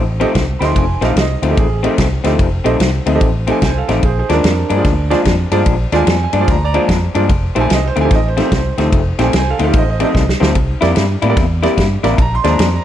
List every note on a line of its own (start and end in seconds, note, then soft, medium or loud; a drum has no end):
0.00 0.23 A1 medium
0.20 0.43 F2 medium
0.20 0.43 D#3 medium
0.20 0.43 A3 medium
0.20 0.43 C4 loud
0.20 0.28 G4 medium
0.20 0.28 A4 medium
0.20 0.28 C5 medium
0.20 0.28 D#5 medium
0.20 ride medium
0.35 0.54 C2 medium
0.35 kick medium
0.35 snare loud
0.35 ride medium
0.59 0.71 D2 medium
0.59 0.84 F2 medium
0.59 0.84 D#3 medium
0.59 0.84 A3 medium
0.59 0.84 C4 medium
0.59 0.69 G4 medium
0.59 0.69 A4 medium
0.59 0.69 C5 medium
0.59 0.69 D#5 medium
0.59 0.61 B5 medium
0.59 snare soft
0.59 ride medium
0.64 0.77 C6 loud
0.76 0.95 F1 loud
0.76 1.03 G#5 medium
0.76 kick loud
0.76 ride medium
1.01 1.12 A#1 medium
1.01 1.25 F2 medium
1.01 1.25 D#3 medium
1.01 1.25 A3 medium
1.01 1.24 C4 medium
1.01 1.10 G4 medium
1.01 1.10 A4 medium
1.01 1.10 C5 medium
1.01 1.10 D#5 medium
1.01 1.18 F5 medium
1.01 snare soft
1.01 ride medium
1.16 1.35 C2 medium
1.16 1.42 D#5 medium
1.16 snare loud
1.16 ride medium
1.42 1.53 D2 medium
1.42 1.66 F2 medium
1.42 1.66 D#3 medium
1.42 1.66 A3 medium
1.42 1.65 C4 medium
1.42 1.47 C5 soft
1.42 1.47 D#5 soft
1.42 ride medium
1.51 1.58 G4 medium
1.51 1.58 A4 medium
1.51 1.58 C5 medium
1.51 1.58 D#5 medium
1.57 1.86 A1 medium
1.57 1.84 G#4 medium
1.57 kick loud
1.57 ride medium
1.83 2.07 F2 medium
1.83 2.07 D#3 medium
1.83 2.06 A3 loud
1.83 2.06 C4 loud
1.83 1.92 G4 medium
1.83 1.92 A4 medium
1.83 1.91 C5 medium
1.83 1.92 D#5 medium
1.83 ride medium
1.98 2.17 C2 loud
1.98 kick medium
1.98 snare loud
1.98 ride medium
2.24 2.35 D2 medium
2.24 2.47 F2 medium
2.24 2.47 D#3 medium
2.24 2.47 A3 medium
2.24 2.47 C4 medium
2.24 2.32 G4 medium
2.24 2.32 A4 medium
2.24 2.32 C5 medium
2.24 2.32 D#5 medium
2.24 snare soft
2.24 ride medium
2.39 2.58 F1 medium
2.39 kick loud
2.39 ride medium
2.64 2.76 A#1 medium
2.64 2.88 F2 medium
2.64 2.88 D#3 medium
2.64 2.88 A3 medium
2.64 2.88 C4 loud
2.64 2.73 G4 medium
2.64 2.73 A4 medium
2.64 2.73 C5 medium
2.64 2.73 D#5 loud
2.64 ride medium
2.80 2.99 C2 medium
2.80 snare loud
2.80 ride medium
3.06 3.17 D2 medium
3.06 3.30 F2 medium
3.06 3.29 D#3 medium
3.06 3.29 A3 medium
3.06 3.29 C4 medium
3.06 3.11 C5 medium
3.06 3.11 D#5 medium
3.06 ride medium
3.15 3.22 G4 medium
3.15 3.22 A4 medium
3.15 3.22 C5 medium
3.15 3.22 D#5 medium
3.21 3.50 A1 medium
3.21 kick loud
3.21 ride medium
3.47 3.71 F2 medium
3.47 3.70 D#3 medium
3.47 3.70 A3 medium
3.47 3.70 C4 loud
3.47 3.55 G4 medium
3.47 3.55 A4 medium
3.47 3.55 C5 medium
3.47 3.55 D#5 medium
3.47 3.50 G5 medium
3.47 ride medium
3.51 3.63 G#5 medium
3.62 3.81 C2 medium
3.62 3.76 C5 medium
3.62 3.77 G#5 medium
3.62 kick medium
3.62 snare loud
3.62 ride medium
3.77 3.87 A4 medium
3.77 3.90 F5 medium
3.88 3.99 A1 medium
3.88 4.04 F2 medium
3.88 4.03 D#3 medium
3.88 4.03 A3 medium
3.88 4.03 C4 medium
3.88 3.96 G4 medium
3.88 3.96 A4 medium
3.88 3.96 C5 medium
3.88 3.96 D#5 medium
3.88 4.04 F5 medium
3.88 snare soft
3.88 ride medium
4.03 4.22 A#1 loud
4.03 4.17 G#4 medium
4.03 4.18 C5 medium
4.03 kick loud
4.03 ride medium
4.19 4.28 G#4 medium
4.19 4.28 C5 medium
4.29 4.40 D#2 medium
4.29 4.52 A#2 medium
4.29 4.52 F3 medium
4.29 4.52 G#3 medium
4.29 4.52 D4 loud
4.29 5.50 D4 medium
4.29 4.37 F4 medium
4.29 4.37 G#4 medium
4.29 5.51 A#4 loud
4.29 4.37 C5 medium
4.29 4.37 D5 medium
4.29 snare soft
4.29 ride medium
4.44 4.63 F2 loud
4.44 snare loud
4.44 ride medium
4.70 4.80 G2 medium
4.70 4.93 A#2 medium
4.70 4.93 F3 medium
4.70 4.93 G#3 medium
4.70 4.92 D4 medium
4.70 4.74 C5 soft
4.70 4.74 D5 soft
4.70 ride medium
4.76 4.84 F4 medium
4.76 4.84 G#4 medium
4.76 4.84 C5 medium
4.76 4.84 D5 medium
4.84 5.13 D2 medium
4.84 kick loud
4.84 snare soft
4.84 ride medium
5.10 5.34 A#2 medium
5.10 5.34 F3 medium
5.10 5.34 G#3 loud
5.10 5.33 D4 loud
5.10 5.18 F4 medium
5.10 5.18 G#4 medium
5.10 5.18 C5 medium
5.10 5.18 D5 medium
5.10 snare soft
5.10 ride medium
5.25 5.44 F2 medium
5.25 kick medium
5.25 snare loud
5.25 ride medium
5.52 5.62 G2 medium
5.52 5.75 A#2 medium
5.52 5.75 F3 medium
5.52 5.74 G#3 medium
5.52 5.74 D4 medium
5.52 5.59 F4 medium
5.52 5.59 G#4 medium
5.52 5.60 C5 medium
5.52 5.59 D5 medium
5.52 ride medium
5.66 5.85 A#1 loud
5.66 kick loud
5.66 ride medium
5.92 6.03 D#2 medium
5.92 6.16 A#2 medium
5.92 6.15 F3 medium
5.92 6.15 G#3 loud
5.92 6.15 D4 medium
5.92 6.00 F4 medium
5.92 6.00 G#4 medium
5.92 6.00 C5 medium
5.92 6.00 D5 medium
5.92 6.21 G#5 loud
5.92 snare soft
5.92 ride medium
6.07 6.26 F2 medium
6.07 snare loud
6.07 ride medium
6.24 6.49 G#5 medium
6.33 6.43 G2 medium
6.33 6.56 A#2 medium
6.33 6.56 F3 medium
6.33 6.56 G#3 medium
6.33 6.56 D4 medium
6.33 6.37 C5 soft
6.33 6.37 D5 medium
6.33 ride medium
6.41 6.48 F4 medium
6.41 6.48 G#4 medium
6.41 6.48 C5 medium
6.41 6.48 D5 medium
6.48 6.77 D2 medium
6.48 6.62 A#5 medium
6.48 kick loud
6.48 snare soft
6.48 ride medium
6.64 6.73 D5 medium
6.64 7.03 A#5 loud
6.74 6.97 A#2 medium
6.74 6.97 F3 medium
6.74 6.97 G#3 loud
6.74 6.97 D4 loud
6.74 6.82 F4 medium
6.74 6.82 G#4 medium
6.74 6.82 C5 medium
6.74 6.82 D5 medium
6.74 ride medium
6.89 7.07 F2 loud
6.89 kick medium
6.89 snare loud
6.89 ride medium
7.15 7.31 G2 medium
7.15 7.30 A#2 medium
7.15 7.30 F3 medium
7.15 7.30 G#3 medium
7.15 7.29 D4 medium
7.15 7.23 F4 medium
7.15 7.22 G#4 medium
7.15 7.23 C5 medium
7.15 7.22 D5 medium
7.15 ride medium
7.29 7.48 F1 loud
7.29 kick loud
7.29 ride medium
7.55 7.66 A#1 medium
7.55 7.79 F2 medium
7.55 7.78 D#3 medium
7.55 7.78 A3 medium
7.55 7.78 C4 medium
7.55 7.63 D#4 medium
7.55 7.63 G4 medium
7.55 7.63 A4 medium
7.55 7.63 C5 medium
7.55 ride medium
7.60 7.72 G#5 loud
7.70 7.89 C2 medium
7.70 7.85 D#5 loud
7.70 snare loud
7.70 ride medium
7.87 7.96 C5 loud
7.96 8.07 D2 medium
7.96 8.19 F2 medium
7.96 8.19 D#3 medium
7.96 8.19 A3 medium
7.96 8.19 C4 medium
7.96 8.00 A4 soft
7.96 8.01 C5 medium
7.96 ride medium
8.01 8.11 D#4 medium
8.01 8.11 G4 medium
8.01 8.12 A4 medium
8.01 8.12 C5 medium
8.01 8.13 G#5 medium
8.11 8.40 A1 medium
8.11 kick loud
8.11 snare soft
8.11 ride medium
8.15 8.26 D#5 loud
8.28 8.37 C5 medium
8.37 8.60 F2 medium
8.37 8.60 D#3 medium
8.37 8.60 A3 medium
8.37 8.59 C4 loud
8.37 8.45 D#4 medium
8.37 8.45 G4 medium
8.37 8.45 A4 medium
8.37 8.41 C5 medium
8.37 snare soft
8.37 ride medium
8.42 8.77 C5 loud
8.52 8.70 C2 medium
8.52 kick medium
8.52 snare loud
8.52 ride medium
8.78 8.88 D2 medium
8.78 9.01 F2 medium
8.78 9.01 D#3 medium
8.78 9.01 A3 medium
8.78 9.00 C4 medium
8.78 8.86 D#4 medium
8.78 8.86 G4 medium
8.78 8.86 A4 medium
8.78 8.86 C5 medium
8.78 snare soft
8.78 ride medium
8.92 9.11 F1 loud
8.92 kick loud
8.92 ride medium
9.19 9.29 A#1 medium
9.19 9.42 F2 medium
9.19 9.42 D#3 medium
9.19 9.41 A3 medium
9.19 9.41 C4 loud
9.19 9.26 D#4 medium
9.19 9.26 G4 medium
9.19 9.26 A4 medium
9.19 9.26 C5 medium
9.19 9.22 G5 medium
9.19 snare soft
9.19 ride medium
9.23 9.35 G#5 loud
9.33 9.52 C2 medium
9.33 9.48 C5 medium
9.33 9.48 G#5 medium
9.33 snare loud
9.33 ride medium
9.50 9.58 A4 medium
9.50 9.62 F5 medium
9.59 9.70 D2 medium
9.59 9.82 F2 medium
9.59 9.82 D#3 medium
9.59 9.82 A3 medium
9.59 9.82 C4 medium
9.59 9.62 A4 soft
9.59 9.63 C5 medium
9.59 ride medium
9.64 9.74 D#4 medium
9.64 9.74 G4 medium
9.64 9.66 A4 medium
9.64 9.74 A4 medium
9.64 9.74 C5 medium
9.64 9.75 F5 medium
9.73 10.03 A1 medium
9.73 9.88 C5 medium
9.73 kick loud
9.73 ride medium
9.78 9.89 D#5 loud
9.90 10.00 C5 medium
9.90 10.02 D#5 medium
10.00 10.23 F2 medium
10.00 10.23 D#3 medium
10.00 10.23 A3 medium
10.00 10.23 C4 loud
10.00 10.08 D#4 medium
10.00 10.08 G4 medium
10.00 10.08 A4 medium
10.00 10.08 C5 medium
10.00 10.03 D5 medium
10.00 ride medium
10.04 10.56 D#5 medium
10.15 10.33 C2 loud
10.15 kick medium
10.15 snare medium
10.29 snare medium
10.40 10.55 D2 medium
10.40 10.56 F2 medium
10.40 10.56 D#3 medium
10.40 10.55 A3 medium
10.40 10.55 C4 medium
10.40 10.48 D#4 medium
10.40 10.48 G4 medium
10.40 10.48 A4 medium
10.40 10.48 C5 medium
10.40 snare loud
10.55 10.74 C2 loud
10.55 kick loud
10.55 ride medium
10.81 10.92 F2 medium
10.81 11.04 C3 medium
10.81 11.04 G3 medium
10.81 11.04 A#3 medium
10.81 11.04 E4 loud
10.81 10.89 E4 medium
10.81 10.89 G4 medium
10.81 10.89 A#4 medium
10.81 10.89 D5 medium
10.81 snare soft
10.81 ride medium
10.96 11.15 G2 medium
10.96 snare loud
10.96 ride medium
11.22 11.33 A2 medium
11.22 11.45 C3 medium
11.22 11.45 G3 medium
11.22 11.45 A#3 medium
11.22 11.45 E4 medium
11.22 11.26 A#4 medium
11.22 11.26 D5 medium
11.22 ride medium
11.29 11.37 E4 medium
11.29 11.37 G4 medium
11.29 11.37 A#4 medium
11.29 11.37 D5 medium
11.37 11.65 E2 medium
11.37 kick loud
11.37 snare soft
11.37 ride medium
11.63 11.86 C3 medium
11.63 11.86 G3 medium
11.63 11.86 A#3 medium
11.63 11.85 E4 loud
11.63 11.71 E4 medium
11.63 11.70 G4 medium
11.63 11.70 A#4 medium
11.63 11.71 D5 loud
11.63 snare soft
11.63 ride medium
11.78 11.96 G2 medium
11.78 kick medium
11.78 snare loud
11.78 ride medium
12.03 12.14 A1 medium
12.03 12.19 C3 medium
12.03 12.19 G3 medium
12.03 12.18 A#3 medium
12.03 12.18 E4 medium
12.03 12.11 E4 medium
12.03 12.11 G4 medium
12.03 12.11 A#4 medium
12.03 12.11 D5 medium
12.03 snare soft
12.03 ride medium
12.17 12.37 A#1 loud
12.17 12.20 A5 medium
12.17 kick loud
12.17 ride medium
12.22 12.33 A#5 loud
12.35 12.47 C6 loud
12.44 12.55 D#2 medium
12.44 12.68 A#2 medium
12.44 12.67 F3 medium
12.44 12.67 G#3 medium
12.44 12.67 D4 loud
12.44 12.52 F4 medium
12.44 12.52 G#4 medium
12.44 12.51 C5 medium
12.44 12.52 D5 medium
12.44 snare soft
12.44 ride medium
12.48 12.73 A#5 loud
12.59 12.78 F2 loud
12.59 snare loud
12.59 ride medium
12.76 12.84 A#5 medium